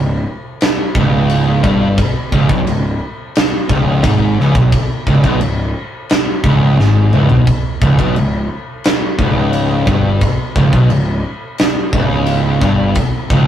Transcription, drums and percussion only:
0.61 snare loud
0.61 crash medium
0.95 kick loud
1.29 crash medium
1.64 kick loud
1.98 kick loud
1.98 crash medium
2.32 kick loud
2.49 kick loud
2.67 crash medium
3.35 snare loud
3.35 crash medium
3.69 kick loud
4.04 kick loud
4.04 crash medium
4.40 snare soft
4.55 kick loud
4.72 kick loud
4.72 crash medium
5.07 kick loud
5.24 kick loud
5.41 crash medium
6.09 snare loud
6.09 crash medium
6.44 kick loud
6.80 snare medium
7.13 mid tom medium
7.29 floor tom loud
7.47 kick loud
7.47 crash medium
7.82 kick loud
7.99 kick loud
8.16 crash medium
8.84 snare loud
8.84 crash medium
9.19 kick loud
9.53 crash medium
9.87 kick loud
10.21 kick loud
10.21 crash medium
10.56 kick loud
10.73 kick loud
10.90 crash medium
11.58 snare loud
11.58 crash medium
11.93 kick loud
12.26 crash medium
12.61 kick medium
12.61 snare soft
12.95 kick loud
12.95 crash medium
13.30 kick loud

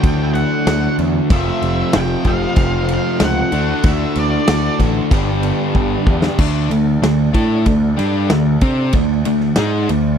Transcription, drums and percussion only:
0.04 kick loud
0.04 crash medium
0.35 crash medium
0.67 snare loud
0.67 crash medium
0.99 crash medium
1.30 kick loud
1.30 crash medium
1.62 crash medium
1.93 snare loud
1.93 crash medium
2.25 kick medium
2.25 crash medium
2.56 kick loud
2.56 crash medium
2.88 crash medium
3.20 snare loud
3.20 crash medium
3.52 crash medium
3.83 kick loud
3.83 crash medium
4.15 crash medium
4.48 snare loud
4.48 crash loud
4.80 kick medium
4.80 crash medium
5.11 kick loud
5.11 crash medium
5.43 crash medium
5.75 kick medium
6.07 kick loud
6.22 snare loud
6.39 kick loud
6.39 crash loud
6.71 ride medium
7.03 snare loud
7.03 ride loud
7.34 kick loud
7.34 ride medium
7.66 kick medium
7.66 ride loud
7.99 snare soft
7.99 ride medium
8.30 snare loud
8.30 ride loud
8.61 kick loud
8.61 ride medium
8.93 kick loud
8.93 ride loud
9.25 ride medium
9.40 snare soft
9.56 snare loud
9.56 ride loud
9.89 ride medium

